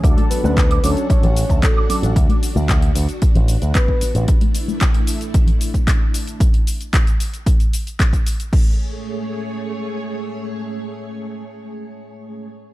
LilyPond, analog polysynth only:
\new Staff \with { instrumentName = "Analog polysynth" } { \time 4/4 \key a \major \tempo 4 = 113 <fis d' a'>8. <fis cis' d' a'>16 r8 <fis cis' d' a'>8 <fis cis' d' a'>16 r8 <fis cis' d' a'>16 r8 <fis cis' d' a'>8 | r1 | r1 | r1 |
r1 | r1 | }